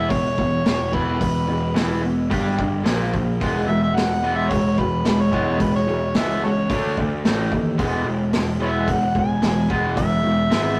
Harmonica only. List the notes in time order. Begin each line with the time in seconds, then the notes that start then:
Already playing: E5
0.10 C#5
0.94 B4
3.67 E5
3.83 E5
3.94 F#5
4.35 E5
4.50 C#5
4.79 B4
5.06 B4
5.20 C#5
5.62 B4
5.76 C#5
6.17 E5
6.44 F#4 A4 C#5
8.62 B4 C#5 E5
8.91 F#5
9.19 G#5
9.96 E5